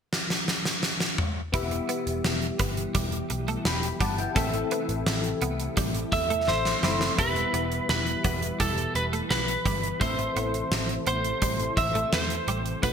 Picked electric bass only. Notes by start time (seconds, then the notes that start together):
1.54 E1
2.07 E1
2.24 E1
2.60 G1
2.95 E1
3.30 B1
3.65 E1
4.00 G1
4.36 A1
4.89 A1
5.07 A1
5.42 C2
5.77 A1
6.12 E2
6.48 A1
6.83 F#1
7.18 E1
7.54 E1
7.89 E1
8.25 E1
8.60 E1
8.95 E1
9.30 B1
9.66 G1
10.01 A1
10.36 A1
10.71 A1
11.07 A1
11.42 A1
11.77 A1
12.13 E2
12.48 A1
12.83 B1